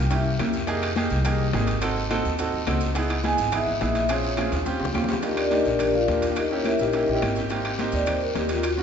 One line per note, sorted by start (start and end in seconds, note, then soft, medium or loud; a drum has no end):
0.00 0.36 C2 medium
0.10 0.31 A#3 medium
0.10 0.31 C#4 medium
0.10 0.31 E4 medium
0.10 0.31 G4 medium
0.10 0.52 E5 medium
0.10 high bongo medium
0.10 high conga soft
0.10 high timbale medium
0.10 long guiro medium
0.10 maracas medium
0.25 high bongo soft
0.25 high conga soft
0.25 maracas soft
0.38 1.05 F2 medium
0.38 0.59 A#3 medium
0.38 0.59 C#4 medium
0.38 0.60 E4 medium
0.38 0.60 G4 medium
0.38 high bongo medium
0.38 low bongo medium
0.38 high conga medium
0.38 high timbale medium
0.38 short guiro medium
0.38 claves medium
0.38 maracas soft
0.53 high bongo soft
0.53 short guiro medium
0.53 maracas medium
0.67 0.87 A#3 loud
0.67 0.88 D#4 medium
0.67 0.88 G4 medium
0.67 0.88 G#4 loud
0.67 high bongo medium
0.67 high conga soft
0.67 high timbale medium
0.67 long guiro medium
0.67 maracas medium
0.81 high bongo soft
0.81 high conga soft
0.81 high timbale loud
0.81 claves medium
0.81 maracas soft
0.95 1.16 A#3 medium
0.95 1.16 D#4 medium
0.95 1.17 G4 medium
0.95 1.17 G#4 loud
0.95 high bongo medium
0.95 high conga loud
0.95 high timbale medium
0.95 short guiro medium
0.95 maracas soft
1.10 1.50 C2 medium
1.10 short guiro medium
1.10 maracas medium
1.24 1.45 A#3 medium
1.24 1.45 D#4 medium
1.24 1.45 G4 medium
1.24 1.46 G#4 loud
1.24 high bongo medium
1.24 high conga soft
1.24 low conga medium
1.24 high timbale medium
1.24 claves medium
1.24 maracas medium
1.39 high bongo soft
1.39 maracas soft
1.53 2.19 G#1 medium
1.53 1.73 A#3 medium
1.53 1.74 D#4 medium
1.53 1.74 G4 medium
1.53 1.74 G#4 medium
1.53 high bongo medium
1.53 low bongo medium
1.53 high conga medium
1.53 high timbale medium
1.53 low timbale medium
1.53 short guiro medium
1.53 maracas soft
1.67 high bongo soft
1.67 high timbale medium
1.67 short guiro medium
1.67 maracas medium
1.81 2.02 C4 loud
1.81 2.02 D#4 medium
1.81 2.02 F#4 medium
1.81 2.02 A4 loud
1.81 high bongo medium
1.81 high conga soft
1.81 high timbale loud
1.81 long guiro medium
1.81 claves medium
1.81 maracas medium
1.96 high conga soft
1.96 maracas soft
2.09 2.30 C4 loud
2.09 2.30 D#4 loud
2.09 2.30 F#4 medium
2.09 2.31 A4 loud
2.09 high bongo medium
2.09 high conga medium
2.09 high timbale medium
2.09 short guiro medium
2.09 claves medium
2.09 maracas soft
2.25 2.51 D#2 medium
2.25 high bongo soft
2.25 short guiro medium
2.25 maracas medium
2.38 2.59 C4 medium
2.38 2.59 D#4 medium
2.38 2.59 F#4 medium
2.38 2.60 A4 medium
2.38 high bongo medium
2.38 high conga soft
2.38 high timbale medium
2.38 long guiro medium
2.38 maracas medium
2.53 2.66 D#2 medium
2.53 high bongo soft
2.53 high conga soft
2.53 maracas soft
2.66 3.33 C#2 medium
2.66 2.87 C4 medium
2.66 2.87 D#4 medium
2.66 2.87 F#4 medium
2.66 2.88 A4 medium
2.66 high bongo medium
2.66 low bongo medium
2.66 high conga medium
2.66 high timbale medium
2.66 short guiro medium
2.66 claves medium
2.66 maracas soft
2.81 high bongo soft
2.81 short guiro medium
2.81 maracas medium
2.95 3.15 B3 loud
2.95 3.16 D#4 medium
2.95 3.16 E4 medium
2.95 3.16 G#4 loud
2.95 high bongo medium
2.95 high conga soft
2.95 high timbale medium
2.95 long guiro medium
2.95 maracas medium
3.09 high bongo soft
3.09 high conga soft
3.09 high timbale medium
3.09 claves medium
3.09 maracas soft
3.23 3.44 B3 medium
3.23 3.44 D#4 medium
3.23 3.44 E4 medium
3.23 3.45 G#4 medium
3.23 3.52 G#5 loud
3.23 high bongo medium
3.23 high conga loud
3.23 high timbale medium
3.23 short guiro medium
3.23 maracas soft
3.38 3.78 G#1 medium
3.38 high conga soft
3.38 short guiro medium
3.38 maracas medium
3.52 3.72 B3 medium
3.52 3.73 D#4 medium
3.52 3.73 E4 medium
3.52 3.73 G#4 medium
3.52 3.80 E5 medium
3.52 high bongo medium
3.52 high conga soft
3.52 low conga medium
3.52 high timbale loud
3.52 claves medium
3.52 maracas medium
3.67 high bongo soft
3.67 high conga soft
3.67 low conga medium
3.67 maracas soft
3.80 4.47 A#1 medium
3.80 4.01 B3 medium
3.80 4.01 D#4 medium
3.80 4.01 E4 medium
3.80 4.01 G#4 medium
3.80 4.12 E5 medium
3.80 high bongo medium
3.80 low bongo medium
3.80 high conga medium
3.80 high timbale medium
3.80 short guiro medium
3.80 maracas soft
3.95 high bongo soft
3.95 high conga medium
3.95 high timbale medium
3.95 short guiro medium
3.95 maracas medium
4.09 4.29 C4 medium
4.09 4.30 C#4 medium
4.09 4.30 F4 medium
4.09 4.30 G#4 medium
4.09 4.63 C#5 medium
4.09 high bongo medium
4.09 high conga soft
4.09 high timbale loud
4.09 long guiro medium
4.09 claves medium
4.09 maracas medium
4.23 high conga soft
4.23 maracas soft
4.37 4.58 C4 medium
4.37 4.58 C#4 medium
4.37 4.58 F4 medium
4.37 4.58 G#4 medium
4.37 high bongo medium
4.37 high conga loud
4.37 high timbale medium
4.37 short guiro medium
4.37 claves medium
4.37 maracas soft
4.52 4.78 D#2 medium
4.52 high bongo soft
4.52 high conga soft
4.52 high timbale medium
4.52 short guiro medium
4.52 maracas medium
4.65 4.86 C4 medium
4.65 4.86 C#4 medium
4.65 4.86 F4 medium
4.65 4.87 G4 loud
4.65 high bongo medium
4.65 high conga soft
4.65 long guiro medium
4.65 maracas medium
4.80 4.94 C#2 medium
4.80 high conga soft
4.80 low timbale medium
4.80 maracas soft
4.85 low bongo medium
4.93 5.60 D#2 medium
4.93 5.14 C4 medium
4.93 5.14 C#4 medium
4.93 5.15 F4 medium
4.93 5.15 G4 medium
4.93 low bongo medium
4.93 high conga medium
4.93 low timbale medium
4.93 short guiro medium
4.93 claves medium
4.93 maracas soft
5.04 low bongo medium
5.08 high conga soft
5.08 low timbale loud
5.08 short guiro medium
5.08 maracas medium
5.13 low bongo medium
5.22 5.43 A#3 medium
5.22 5.43 D4 medium
5.22 5.38 D#4 medium
5.22 5.43 F4 medium
5.22 5.43 G4 medium
5.22 5.37 G4 medium
5.22 5.38 A#4 medium
5.22 5.38 D#5 medium
5.22 high bongo medium
5.22 high conga soft
5.22 high timbale medium
5.22 long guiro medium
5.22 maracas medium
5.37 5.52 D4 medium
5.37 5.51 G4 medium
5.37 5.51 A#4 medium
5.37 5.52 D5 medium
5.37 high bongo soft
5.37 high conga soft
5.37 high timbale medium
5.37 claves medium
5.37 maracas soft
5.51 5.91 A#3 medium
5.51 5.91 D4 medium
5.51 5.66 D#4 medium
5.51 5.92 F4 medium
5.51 5.65 G4 medium
5.51 5.92 G4 medium
5.51 5.66 A#4 medium
5.51 5.66 D#5 medium
5.51 high bongo medium
5.51 high conga medium
5.51 high timbale medium
5.51 short guiro medium
5.51 maracas soft
5.65 6.05 A#1 medium
5.65 5.93 D4 medium
5.65 5.93 G4 medium
5.65 5.93 A#4 medium
5.65 5.92 D5 medium
5.65 high conga soft
5.65 short guiro medium
5.65 maracas medium
5.79 high bongo medium
5.79 high conga soft
5.79 low conga medium
5.79 high timbale medium
5.79 long guiro medium
5.79 claves medium
5.79 maracas medium
5.94 6.21 F4 medium
5.94 6.21 A#4 medium
5.94 6.21 D5 medium
5.94 6.21 F5 medium
5.94 high bongo soft
5.94 high conga soft
5.94 low conga medium
5.94 maracas soft
6.08 6.74 D#2 medium
6.08 6.23 A#3 medium
6.08 6.24 D4 medium
6.08 6.24 F4 medium
6.08 6.24 G4 medium
6.08 high bongo medium
6.08 low bongo medium
6.08 high conga medium
6.08 high timbale medium
6.08 short guiro medium
6.08 maracas soft
6.22 high bongo soft
6.22 high conga medium
6.22 high timbale medium
6.22 short guiro medium
6.22 maracas medium
6.29 6.37 A#3 medium
6.29 6.37 D4 medium
6.29 6.37 F4 medium
6.29 6.37 G4 medium
6.36 6.52 D#4 medium
6.36 6.52 G4 medium
6.36 6.51 A#4 medium
6.36 6.51 D#5 medium
6.36 high bongo medium
6.36 high conga soft
6.36 high timbale medium
6.36 long guiro medium
6.36 claves medium
6.36 maracas medium
6.50 6.71 A#3 medium
6.50 6.71 C#4 medium
6.50 6.66 C#4 medium
6.50 6.72 E4 medium
6.50 6.72 G4 medium
6.50 6.66 G4 medium
6.50 6.66 A#4 medium
6.50 6.66 C#5 medium
6.50 high conga soft
6.50 maracas soft
6.65 6.80 E4 medium
6.65 6.80 A#4 medium
6.65 6.80 C#5 medium
6.65 6.80 E5 medium
6.65 high bongo medium
6.65 high conga loud
6.65 high timbale medium
6.65 short guiro medium
6.65 claves medium
6.65 maracas soft
6.79 7.06 A#1 medium
6.79 6.90 A#3 medium
6.79 6.90 C#4 medium
6.79 7.07 D#4 medium
6.79 6.90 E4 medium
6.79 6.90 G4 medium
6.79 7.07 G4 medium
6.79 7.07 A#4 medium
6.79 7.07 D#5 medium
6.79 high bongo soft
6.79 short guiro medium
6.79 maracas medium
6.93 7.08 A#3 medium
6.93 7.09 C#4 medium
6.93 7.09 E4 medium
6.93 7.09 G4 medium
6.93 high bongo medium
6.93 high conga soft
6.93 high timbale medium
6.93 long guiro medium
6.93 maracas medium
7.07 7.21 A#1 medium
7.07 7.36 G4 medium
7.07 7.36 D#5 medium
7.07 7.36 E5 medium
7.07 7.35 G5 medium
7.07 high bongo soft
7.07 high conga soft
7.07 maracas soft
7.14 7.29 A#3 medium
7.14 7.30 C#4 medium
7.14 7.30 E4 medium
7.14 7.30 G4 medium
7.21 7.88 G#1 medium
7.21 high bongo medium
7.21 low bongo medium
7.21 high conga medium
7.21 high timbale medium
7.21 short guiro medium
7.21 claves medium
7.21 maracas soft
7.36 7.46 A#3 medium
7.36 7.46 C#4 medium
7.36 7.47 E4 medium
7.36 7.47 G4 medium
7.36 high bongo soft
7.36 high conga soft
7.36 short guiro medium
7.36 maracas medium
7.49 7.70 A#3 medium
7.49 7.71 C4 medium
7.49 7.71 D#4 medium
7.49 7.71 G4 medium
7.49 high bongo medium
7.49 high conga soft
7.49 high timbale medium
7.49 long guiro medium
7.49 maracas medium
7.64 high bongo soft
7.64 high conga soft
7.64 high timbale medium
7.64 claves medium
7.64 maracas soft
7.78 8.18 A#3 medium
7.78 8.19 C4 medium
7.78 8.19 D#4 medium
7.78 8.19 G4 loud
7.78 high bongo medium
7.78 high conga medium
7.78 high timbale medium
7.78 short guiro medium
7.78 maracas soft
7.92 8.32 D#2 medium
7.92 8.08 D5 medium
7.92 high conga soft
7.92 short guiro medium
7.92 maracas medium
8.06 8.22 C5 medium
8.06 high bongo medium
8.06 high conga soft
8.06 low conga medium
8.06 high timbale medium
8.06 long guiro medium
8.06 claves medium
8.06 maracas medium
8.21 8.36 A#4 medium
8.21 high bongo soft
8.21 high conga soft
8.21 maracas soft
8.34 8.83 D#2 medium
8.34 8.50 A#3 medium
8.34 8.50 C4 medium
8.34 8.50 D#4 medium
8.34 8.51 G4 medium
8.34 high bongo medium
8.34 low bongo medium
8.34 high conga medium
8.34 high timbale medium
8.34 short guiro medium
8.34 maracas soft
8.49 8.65 F4 medium
8.49 high bongo soft
8.49 high timbale medium
8.49 short guiro medium
8.49 maracas medium
8.55 8.63 A#3 medium
8.55 8.64 C4 medium
8.55 8.64 D#4 medium
8.55 8.64 G4 medium
8.63 8.83 F#4 medium
8.63 high bongo medium
8.63 high timbale loud
8.63 long guiro medium
8.63 claves medium
8.63 maracas medium
8.77 8.83 A#3 medium
8.77 8.83 C#4 medium
8.77 8.83 F4 medium
8.77 8.83 F#4 medium
8.77 high conga soft
8.77 maracas soft